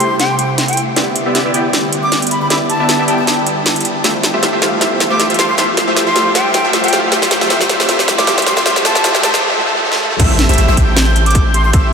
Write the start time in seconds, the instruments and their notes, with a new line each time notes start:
Already playing: ambient pad C3 G3 A3 E4, flute C6, riser
0.00 808-style bass A1, supersaw synth A3 E4 G4 C5 G5, closed hi-hat
0.19 flute G5, snare, closed hi-hat
0.39 flute G5, closed hi-hat
0.58 snare, closed hi-hat
0.68 flute G5, closed hi-hat
0.73 closed hi-hat
0.77 ambient pad D3 B3, closed hi-hat
0.96 808-style bass E1, supersaw synth B3 E4 G4 D5 E5, snare, closed hi-hat
1.16 closed hi-hat
1.26 808-style bass E1, supersaw synth B3 E4 G4 D5 E5
1.35 808-style bass E1, supersaw synth B3 E4 G4 D5 E5, snare, closed hi-hat
1.45 808-style bass E1, supersaw synth B3 E4 G4 D5 E5
1.54 808-style bass E1, supersaw synth B3 E4 G4 D5 G5, closed hi-hat
1.73 snare, closed hi-hat
1.93 closed hi-hat
2.03 flute D6
2.12 snare, closed hi-hat
2.22 closed hi-hat
2.27 closed hi-hat
2.31 flute B5, closed hi-hat
2.42 flute B5
2.50 supersaw synth B3 E4 G4 D5 E5, flute B5, snare, closed hi-hat
2.70 flute A5, closed hi-hat
2.80 808-style bass E1, supersaw synth B3 E4 G4 D5 E5
2.89 supersaw synth B3 E4 G4 D5 E5, snare, closed hi-hat
2.99 808-style bass E1, supersaw synth B3 E4 G4 D5 E5
3.08 808-style bass E1, supersaw synth B3 E4 G4 D5 G5, flute A5, closed hi-hat
3.19 flute A5
3.27 snare, closed hi-hat
3.47 closed hi-hat
3.66 snare, closed hi-hat
3.76 closed hi-hat
3.81 closed hi-hat
3.85 closed hi-hat
4.04 ambient pad A3 E4 F4, supersaw synth A3 F4 G4 C5 E5, snare, closed hi-hat
4.23 snare, closed hi-hat
4.34 808-style bass F1, supersaw synth A3 F4 G4 C5 E5
4.43 supersaw synth A3 F4 G4 C5 E5, snare, closed hi-hat
4.53 808-style bass F1, supersaw synth A3 F4 G4 C5 E5
4.62 supersaw synth A3 F4 G4 C5 F5, snare, closed hi-hat
4.81 supersaw synth A3 F4 G4 C5 E5, snare, closed hi-hat
5.00 snare, closed hi-hat
5.10 808-style bass F1, supersaw synth A3 F4 G4 C5 E5, flute D6
5.20 supersaw synth A3 F4 G4 C5 E5, snare, closed hi-hat
5.30 supersaw synth A3 F4 G4 C5 E5, closed hi-hat
5.34 closed hi-hat
5.39 supersaw synth A3 F4 G4 C5 F5, flute C6, snare, closed hi-hat
5.49 flute C6
5.58 supersaw synth A3 F4 G4 C5 E5, flute C6, snare, closed hi-hat
5.77 snare, closed hi-hat
5.88 808-style bass F1, supersaw synth A3 F4 G4 C5 E5
5.96 supersaw synth A3 F4 G4 C5 E5, snare, closed hi-hat
6.07 supersaw synth A3 F4 G4 C5 E5, flute C6
6.16 supersaw synth A3 F4 G4 C5 F5, snare, closed hi-hat
6.35 supersaw synth A3 F4 G4 C5 E5, flute G5, snare, closed hi-hat
6.54 flute G5, snare, closed hi-hat
6.64 808-style bass F2, supersaw synth A3 F4 G4 C5 E5
6.73 808-style bass F2, supersaw synth A3 F4 G4 C5 E5, snare, closed hi-hat
6.84 supersaw synth A3 F4 G4 C5 E5, flute G5, closed hi-hat
6.88 closed hi-hat
6.92 ambient pad D3 F3 C4 E4, supersaw synth A3 F4 G4 C5 F5, snare, closed hi-hat
7.12 supersaw synth A3 F4 G4 C5 E5, snare, closed hi-hat
7.22 snare
7.31 snare, closed hi-hat
7.41 supersaw synth A3 F4 G4 C5 E5, snare
7.50 supersaw synth A3 F4 G4 C5 E5, snare, closed hi-hat
7.61 snare
7.69 snare, closed hi-hat
7.80 supersaw synth A3 F4 G4 C5 E5, snare
7.89 supersaw synth A3 F4 G4 C5 E5, snare, closed hi-hat
7.99 snare
8.08 snare, closed hi-hat
8.18 supersaw synth A3 F4 G4 C5 E5, flute D6, snare
8.27 supersaw synth A3 F4 G4 C5 E5, snare, closed hi-hat
8.38 snare, closed hi-hat
8.42 closed hi-hat
8.46 flute C6, snare, closed hi-hat
8.57 supersaw synth A3 F4 G4 C5 E5, flute C6, snare
8.66 supersaw synth A3 F4 G4 C5 E5, flute C6, snare, closed hi-hat
8.76 snare
8.85 supersaw synth A3 F4 G4 C5 E5, flute A5, snare, closed hi-hat
8.95 snare
9.04 supersaw synth A3 F4 G4 C5 E5, snare, closed hi-hat
9.15 snare
9.23 supersaw synth A3 F4 G4 C5 E5, flute A5, snare, closed hi-hat
9.34 flute A5, snare
9.92 snare
10.00 mid tom
10.11 mid tom
10.19 808-style bass A1, supersaw synth A3 E4 G4 C5 E5, digital synth lead E6, kick, closed hi-hat, crash, impact
10.39 snare, closed hi-hat
10.49 808-style bass A1, supersaw synth A3 E4 G4 C5 E5, digital synth lead E6, closed hi-hat
10.54 closed hi-hat
10.58 808-style bass A1, supersaw synth A3 E4 G4 C5 E5, digital synth lead E6, closed hi-hat
10.68 808-style bass A1, supersaw synth A3 E4 G4 C5 E5, digital synth lead E6
10.77 808-style bass A1, supersaw synth A3 E4 G4 C5 G5, digital synth lead G6, kick, closed hi-hat
10.96 snare, closed hi-hat
11.16 closed hi-hat
11.26 flute D6, closed hi-hat
11.31 closed hi-hat
11.35 kick, closed hi-hat
11.54 flute C6, closed hi-hat
11.65 flute C6
11.73 808-style bass A1, supersaw synth A3 E4 G4 C5 E5, flute C6, digital synth lead E6, kick, closed hi-hat